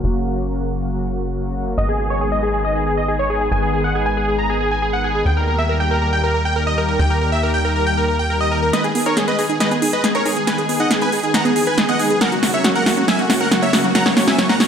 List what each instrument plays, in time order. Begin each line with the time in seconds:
0.04 analog synth bass F#1, analog synth pad C#3 F#3 A#3 F#4
0.25 analog synth pad C#3 F#3 A#3 F#4
0.47 analog synth pad C#3 F#3 A#3 F#4
0.80 analog synth pad C#3 F#3 A#3 F#4
0.91 analog synth pad C#3 F#3 A#3 F#4
1.34 analog synth pad C#3 F#3 A#3 F#4
1.45 analog synth pad C#3 F#3 A#3 F#4
1.56 analog synth pad C#3 F#3 A#3 F#4
1.78 analog synth bass G#1, analog synth pad D#3 G#3 B3 G#4, supersaw synth D#5
1.89 supersaw synth G#4
1.99 analog synth pad D#3 G#3 B3 G#4, supersaw synth G#4
2.10 supersaw synth C#5
2.21 analog synth pad D#3 G#3 B3 G#4, supersaw synth G#4
2.32 supersaw synth D#5
2.43 supersaw synth G#4
2.54 analog synth pad D#3 G#3 B3 G#4, supersaw synth G#4
2.65 analog synth pad D#3 G#3 B3 G#4, supersaw synth D#5
2.75 supersaw synth G#4
2.86 supersaw synth G#4
2.97 supersaw synth D#5
3.08 analog synth pad D#3 G#3 B3 G#4, supersaw synth G#4
3.19 analog synth pad D#3 G#3 B3 G#4, supersaw synth C#5
3.30 analog synth pad D#3 G#3 B3 G#4, supersaw synth G#4
3.41 supersaw synth G#4
3.52 analog synth bass G#1, analog synth pad D#3 G#3 B3 G#4, supersaw synth G#5
3.62 supersaw synth G#4
3.73 analog synth pad D#3 G#3 B3 G#4, supersaw synth G#4
3.84 supersaw synth F#5
3.95 analog synth pad D#3 G#3 B3 G#4, supersaw synth G#4
4.06 supersaw synth G#5
4.17 supersaw synth G#4
4.28 analog synth pad D#3 G#3 B3 G#4, supersaw synth G#4
4.38 analog synth pad D#3 G#3 B3 G#4, supersaw synth A#5
4.50 supersaw synth G#4
4.61 supersaw synth G#4
4.71 supersaw synth G#5
4.82 analog synth pad D#3 G#3 B3 G#4, supersaw synth G#4
4.93 analog synth pad D#3 G#3 B3 G#4, supersaw synth F#5
5.04 analog synth pad D#3 G#3 B3 G#4, supersaw synth G#4
5.15 supersaw synth G#4
5.26 analog synth bass D#2, analog synth pad D#3 G3 A#3 G4, supersaw synth G5
5.37 supersaw synth A#4
5.47 analog synth pad D#3 G3 A#3 G4, supersaw synth A#4
5.58 supersaw synth E5
5.69 analog synth pad D#3 G3 A#3 G4, supersaw synth A#4
5.80 supersaw synth G5
5.91 supersaw synth A#4
6.02 analog synth pad D#3 G3 A#3 G4, supersaw synth A#4
6.12 analog synth pad D#3 G3 A#3 G4, supersaw synth G5
6.23 supersaw synth A#4
6.34 supersaw synth A#4
6.45 supersaw synth G5
6.56 analog synth pad D#3 G3 A#3 G4, supersaw synth A#4
6.67 analog synth pad D#3 G3 A#3 G4, supersaw synth D#5
6.78 analog synth pad D#3 G3 A#3 G4, supersaw synth A#4
6.89 supersaw synth A#4
6.99 analog synth bass D#2, analog synth pad D#3 G3 A#3 G4, supersaw synth G5
7.10 supersaw synth A#4
7.21 analog synth pad D#3 G3 A#3 G4, supersaw synth A#4
7.32 supersaw synth E5
7.43 analog synth pad D#3 G3 A#3 G4, supersaw synth A#4
7.54 supersaw synth G5
7.65 supersaw synth A#4
7.76 analog synth pad D#3 G3 A#3 G4, supersaw synth A#4
7.87 analog synth pad D#3 G3 A#3 G4, supersaw synth G5
7.97 supersaw synth A#4
8.08 supersaw synth A#4
8.19 supersaw synth G5
8.30 analog synth pad D#3 G3 A#3 G4, supersaw synth A#4
8.41 analog synth pad D#3 G3 A#3 G4, supersaw synth D#5
8.52 analog synth pad D#3 G3 A#3 G4, supersaw synth A#4
8.62 supersaw synth A#4
8.73 analog synth pad D#3 G#3 B3 G#4, synth arpeggio sound G#3, supersaw synth B4 D#5, snare, closed hi-hat, riser
8.84 supersaw synth G#4, closed hi-hat
8.95 analog synth pad D#3 G#3 B3 G#4, synth arpeggio sound B3, supersaw synth G#4, open hi-hat
9.06 synth arpeggio sound D#4, supersaw synth A#4 C#5, closed hi-hat
9.17 analog synth pad D#3 G#3 B3 G#4, synth arpeggio sound G#3, supersaw synth G#4, snare, closed hi-hat
9.28 synth arpeggio sound B3, supersaw synth B4 D#5, closed hi-hat
9.39 supersaw synth G#4, open hi-hat
9.49 analog synth pad D#3 G#3 B3 G#4, synth arpeggio sound D#4, supersaw synth G#4, closed hi-hat
9.60 analog synth pad D#3 G#3 B3 G#4, synth arpeggio sound G#3, supersaw synth B4 D#5, snare, closed hi-hat
9.71 synth arpeggio sound B3, supersaw synth G#4, closed hi-hat
9.82 synth arpeggio sound D#4, supersaw synth G#4, open hi-hat
9.93 supersaw synth B4 D#5, closed hi-hat
10.04 analog synth pad D#3 G#3 B3 G#4, synth arpeggio sound G#3, supersaw synth G#4, snare, closed hi-hat
10.14 analog synth pad D#3 G#3 B3 G#4, synth arpeggio sound B3, supersaw synth A#4 C#5, closed hi-hat
10.25 analog synth pad D#3 G#3 B3 G#4, synth arpeggio sound D#4, supersaw synth G#4, open hi-hat
10.36 synth arpeggio sound G#3, supersaw synth G#4, closed hi-hat
10.47 analog synth pad D#3 G#3 B3 G#4, synth arpeggio sound G#3, supersaw synth B4 G#5, snare, closed hi-hat
10.58 supersaw synth G#4, closed hi-hat
10.69 analog synth pad D#3 G#3 B3 G#4, synth arpeggio sound B3, supersaw synth G#4, open hi-hat
10.80 synth arpeggio sound D#4, supersaw synth D#5 F#5, closed hi-hat
10.91 analog synth pad D#3 G#3 B3 G#4, synth arpeggio sound G#3, supersaw synth G#4, snare, closed hi-hat
11.01 synth arpeggio sound B3, supersaw synth B4 G#5, closed hi-hat
11.12 supersaw synth G#4, open hi-hat
11.23 analog synth pad D#3 G#3 B3 G#4, synth arpeggio sound D#4, supersaw synth G#4, closed hi-hat
11.34 analog synth pad D#3 G#3 B3 G#4, synth arpeggio sound G#3, supersaw synth F#5 A#5, snare, closed hi-hat
11.45 synth arpeggio sound B3, supersaw synth G#4, closed hi-hat
11.56 synth arpeggio sound D#4, supersaw synth G#4, open hi-hat
11.67 supersaw synth B4 G#5, closed hi-hat
11.77 analog synth pad D#3 G#3 B3 G#4, synth arpeggio sound G#3, supersaw synth G#4, snare, closed hi-hat
11.88 analog synth pad D#3 G#3 B3 G#4, synth arpeggio sound B3, supersaw synth D#5 F#5, closed hi-hat
11.99 analog synth pad D#3 G#3 B3 G#4, synth arpeggio sound D#4, supersaw synth G#4, open hi-hat
12.10 synth arpeggio sound G#3, supersaw synth G#4, closed hi-hat
12.21 analog synth pad C#3 F#3 A#3 F#4, synth arpeggio sound F#3, supersaw synth A#4 F#5, snare, closed hi-hat
12.32 supersaw synth F#4, closed hi-hat
12.43 analog synth pad C#3 F#3 A#3 F#4, synth arpeggio sound A#3, supersaw synth F#4, snare, open hi-hat
12.54 synth arpeggio sound C#4, supersaw synth C#5 E5, closed hi-hat
12.64 analog synth pad C#3 F#3 A#3 F#4, synth arpeggio sound F#3, supersaw synth F#4, snare, closed hi-hat
12.75 synth arpeggio sound A#3, supersaw synth A#4 F#5, closed hi-hat
12.86 supersaw synth F#4, snare, open hi-hat
12.97 analog synth pad C#3 F#3 A#3 F#4, synth arpeggio sound C#4, supersaw synth F#4, closed hi-hat
13.08 analog synth pad C#3 F#3 A#3 F#4, synth arpeggio sound F#3, supersaw synth E5 G#5, snare, closed hi-hat
13.19 synth arpeggio sound A#3, supersaw synth F#4, closed hi-hat
13.30 synth arpeggio sound C#4, supersaw synth F#4, snare, open hi-hat
13.41 supersaw synth A#4 F#5, closed hi-hat
13.51 analog synth pad C#3 F#3 A#3 F#4, synth arpeggio sound F#3, supersaw synth F#4, snare, closed hi-hat
13.62 analog synth pad C#3 F#3 A#3 F#4, synth arpeggio sound A#3, supersaw synth C#5 E5, closed hi-hat
13.73 analog synth pad C#3 F#3 A#3 F#4, synth arpeggio sound C#4, supersaw synth F#4, snare, open hi-hat
13.84 synth arpeggio sound F#3, supersaw synth F#4, closed hi-hat
13.95 analog synth pad C#3 F#3 A#3 F#4, synth arpeggio sound F#3, supersaw synth F#5 A#5, snare, closed hi-hat
14.06 supersaw synth C#5, snare, closed hi-hat
14.17 analog synth pad C#3 F#3 A#3 F#4, synth arpeggio sound A#3, supersaw synth C#5, snare, open hi-hat
14.28 synth arpeggio sound C#4, supersaw synth E5 G#5, snare, closed hi-hat
14.38 analog synth pad C#3 F#3 A#3 F#4, synth arpeggio sound F#3, supersaw synth C#5, snare, closed hi-hat
14.49 synth arpeggio sound A#3, supersaw synth F#5 A#5, snare, closed hi-hat
14.60 supersaw synth C#5, snare, open hi-hat